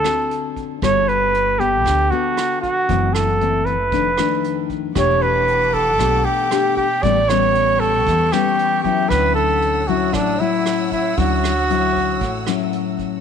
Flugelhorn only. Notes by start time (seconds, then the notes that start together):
Already playing: A4
0.83 C#5
1.08 B4
1.59 G4
2.11 F#4
2.61 F#4
3.13 A4
3.65 B4
4.97 C#5
5.22 B4
5.74 A4
6.25 G4
6.77 G4
7.03 D5
7.29 C#5
7.80 A4
8.33 G4
8.83 G4
9.09 B4
9.35 A4
9.87 F#4
10.14 D4
10.40 E4
10.93 E4
11.18 F#4